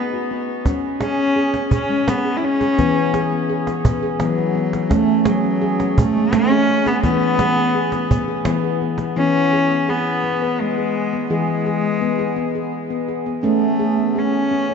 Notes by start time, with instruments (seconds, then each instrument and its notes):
Already playing: handpan B3, cello B3
0.14 handpan F#4
0.31 handpan B3
0.65 handpan C#4, cajon bass, cajon slap
1.00 cello C#4, handpan G#4, cajon slap
1.18 handpan C#4
1.36 handpan G#4
1.53 handpan C#4, cajon slap
1.71 cello C#4, handpan G#4, cajon bass
1.89 handpan G#3, cajon slap
2.08 cello B3, handpan C#4, cajon slap
2.25 handpan G#4, cajon slap
2.37 cello E4
2.42 handpan C#4, cello C#4
2.60 handpan G#4, cajon slap
2.78 handpan E3 B3, cajon bass, cajon slap
3.14 handpan G#4, cajon slap
3.32 handpan B3
3.49 handpan G#4
3.67 cajon slap
3.85 handpan B3, cajon bass
4.02 handpan G#4, cajon slap
4.20 handpan E3 B3, cello F#3, cajon slap
4.38 handpan G#4, cajon slap
4.55 handpan B3
4.73 cajon slap
4.90 handpan A3 C#4, cello A3, cajon bass, cajon slap
5.25 cello F#3, handpan G#4, cajon slap
5.44 handpan C#4
5.62 handpan G#4
5.79 handpan C#4, cajon slap
5.97 cello A3, handpan G#4, cajon bass
6.15 handpan G#3, cajon slap
6.33 handpan A3, cello C#4, cajon slap
6.51 handpan G#4, cajon slap
6.69 handpan C#4
6.86 cello B3, handpan G#4, cajon slap
7.03 handpan E3 B3, cello B3, cajon bass, cajon slap
7.21 cajon slap
7.39 handpan G#4, cajon slap
7.57 handpan B3
7.75 handpan G#4
7.92 cajon slap
8.11 handpan B3, cajon bass
8.28 handpan G#4
8.45 handpan E3 B3, cajon slap
8.64 handpan G#4
8.81 handpan B3, cajon slap
8.98 cajon slap
9.16 handpan E3 B3, cello C#4
9.53 handpan G#4
9.71 handpan B3
9.88 cello B3, handpan G#4
10.24 handpan B3
10.42 handpan B4
10.60 cello G#3, handpan B3
10.78 handpan G#4
11.13 handpan B3
11.30 handpan E3 G#4, cello G#3
11.48 handpan G#3
11.66 handpan G#4
12.01 handpan B3
12.19 handpan G#4
12.36 handpan B3
12.55 handpan G#4
12.90 handpan B3
13.09 handpan G#4
13.26 handpan B3
13.43 handpan A3 C#4, cello A3
13.79 handpan G#4
13.97 handpan B3
14.16 cello C#4, handpan G#4
14.51 handpan C#4
14.70 handpan C#5